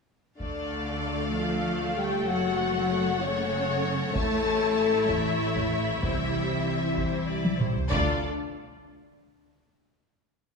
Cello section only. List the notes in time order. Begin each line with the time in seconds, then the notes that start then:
0.40 D3
1.34 F3
1.97 G3
2.27 F#3
3.23 C#3
4.16 A3
5.10 E3
6.04 E3
7.92 D4